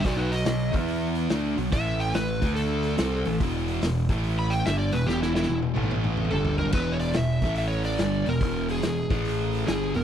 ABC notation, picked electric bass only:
X:1
M:4/4
L:1/8
Q:"Swing" 1/4=144
K:A
V:1 name="Picked electric bass" clef=bass
B,,,2 B,,, E,,3 D,, B,,, | A,,,2 A,,, D,,3 =C,, A,,, | E,,,2 E,,, A,,,3 =G,,, E,,, | E,,,2 E,,, A,,,3 =G,,,2 |
E,,,2 E,,, A,,,3 =G,,, E,,, | E,,,2 E,,, A,,,3 =G,,, E,,, |]